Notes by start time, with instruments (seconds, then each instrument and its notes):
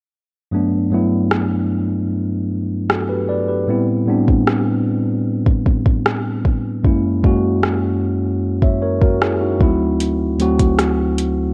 0.51 tine electric piano G2 F#3 A3 B3 D4
0.91 tine electric piano G2 F#3 A3 B3 E4
1.31 cross-stick
2.89 tine electric piano F#4 A4, cross-stick
3.09 tine electric piano G4 B4
3.29 tine electric piano B4 D5
3.48 tine electric piano G4 B4
3.67 tine electric piano A2 G3 B3 C4 E4
4.07 tine electric piano A2 G3 B3 C4 D4
4.28 kick
4.47 cross-stick
5.46 kick
5.66 kick
5.86 kick
6.06 cross-stick
6.45 kick
6.83 tine electric piano F#2 G#3 A#3 C#4 E4, kick
7.22 tine electric piano F#2 G#3 A#3 C#4 F#4, kick
7.63 cross-stick
8.62 tine electric piano C#5 E5, kick
8.82 tine electric piano A#4 C#5
9.01 tine electric piano F#4 A#4, kick
9.21 tine electric piano E4 G#4, cross-stick
9.41 tine electric piano D#4 F#4
9.59 tine electric piano D2 F#3 A3 C4 E4, kick
10.00 closed hi-hat
10.38 tine electric piano D2 F#3 A3 C4 F#4, closed hi-hat
10.59 kick, closed hi-hat
10.79 cross-stick, closed hi-hat
11.18 closed hi-hat